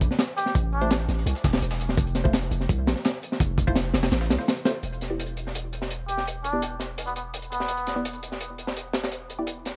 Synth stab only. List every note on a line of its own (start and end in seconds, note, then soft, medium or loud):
0.81 0.92 A3 medium
0.81 0.92 E4 medium
0.81 0.92 G4 medium
0.81 0.92 C5 loud
2.24 2.34 A3 medium
2.24 2.35 E4 medium
2.24 2.34 F4 medium
2.24 2.34 C5 loud
3.67 3.78 A3 medium
3.67 3.78 E4 medium
3.67 3.78 F4 medium
3.67 3.78 C5 loud
4.38 4.49 A3 medium
4.38 4.49 E4 medium
4.38 4.49 F4 medium
4.38 4.49 C5 medium
4.65 4.72 A3 medium
4.65 4.72 E4 medium
4.65 4.72 F4 medium
4.65 4.72 C5 loud
5.10 5.20 B3 medium
5.10 5.20 E4 medium
5.10 5.20 G4 medium
5.10 5.20 D5 medium
6.53 6.63 B3 medium
6.53 6.63 E4 medium
6.53 6.63 G4 medium
6.53 6.63 D5 loud
7.96 8.06 B3 medium
7.96 8.06 E4 medium
7.96 8.06 G4 medium
7.96 8.06 D5 medium
9.39 9.49 B3 medium
9.39 9.49 E4 medium
9.39 9.49 G4 medium
9.39 9.49 D5 loud